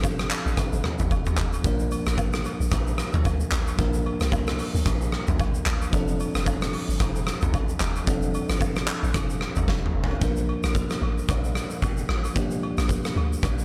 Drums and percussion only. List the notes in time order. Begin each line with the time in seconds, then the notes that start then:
0.04 kick, low woodblock, shaker
0.19 cross-stick, shaker
0.30 clap, high agogo, shaker
0.47 shaker
0.57 kick, cross-stick, high agogo, shaker
0.73 shaker
0.84 cross-stick, mid tom
0.99 mid tom, shaker
1.11 kick, high agogo, low woodblock, shaker
1.26 mid tom, shaker
1.37 cross-stick, clap, shaker
1.53 high agogo, shaker
1.64 kick, shaker
1.79 shaker
1.91 high agogo, shaker
2.06 cross-stick, shaker
2.18 kick, low woodblock, shaker
2.33 cross-stick, shaker
2.45 high agogo, shaker
2.61 shaker
2.72 kick, cross-stick, high agogo, shaker
2.87 shaker
2.98 cross-stick, shaker
3.13 mid tom, shaker
3.25 kick, high agogo, low woodblock, shaker
3.40 shaker
3.51 cross-stick, clap, shaker
3.67 high agogo, shaker
3.79 kick, shaker
3.93 shaker
4.06 high agogo
4.21 cross-stick, shaker
4.32 kick, low woodblock, shaker
4.47 cross-stick, shaker
4.59 open hi-hat, high agogo, shaker
4.75 shaker
4.86 kick, cross-stick, hi-hat pedal, high agogo, shaker
5.01 shaker
5.12 cross-stick
5.27 mid tom, shaker
5.39 kick, high agogo, low woodblock, shaker
5.54 shaker
5.66 cross-stick, clap
5.82 high agogo, shaker
5.93 kick, shaker
6.08 shaker
6.20 high agogo, shaker
6.35 cross-stick, shaker
6.46 kick, low woodblock, shaker
6.61 cross-stick, shaker
6.73 open hi-hat, high agogo
6.90 shaker
7.00 kick, cross-stick, hi-hat pedal, high agogo, shaker
7.16 shaker
7.27 cross-stick, shaker
7.41 mid tom, shaker
7.54 kick, high agogo, low woodblock, shaker
7.69 shaker
7.80 cross-stick, clap, shaker
7.96 high agogo, shaker
8.07 kick, shaker
8.22 shaker
8.34 high agogo, shaker
8.49 cross-stick, shaker
8.61 kick, low woodblock, shaker
8.76 cross-stick, shaker
8.87 clap, high agogo, shaker
9.04 shaker
9.14 kick, cross-stick, high agogo, shaker
9.30 shaker
9.41 cross-stick
9.56 mid tom, shaker
9.68 kick, snare, high agogo, low woodblock
9.86 mid tom
10.04 floor tom
10.11 high agogo
10.22 kick, shaker
10.36 shaker
10.49 high agogo
10.64 cross-stick, shaker
10.75 kick, shaker
10.90 cross-stick, shaker
11.03 high agogo
11.18 shaker
11.29 kick, cross-stick, high agogo, shaker
11.44 shaker
11.55 cross-stick, shaker
11.70 shaker
11.82 kick, high agogo, shaker
11.97 shaker
12.09 cross-stick
12.25 high agogo, shaker
12.36 kick, shaker
12.51 shaker
12.63 high agogo
12.78 cross-stick, shaker
12.89 kick, shaker
13.04 cross-stick, shaker
13.17 high agogo
13.33 shaker
13.43 kick, cross-stick, high agogo, shaker
13.59 shaker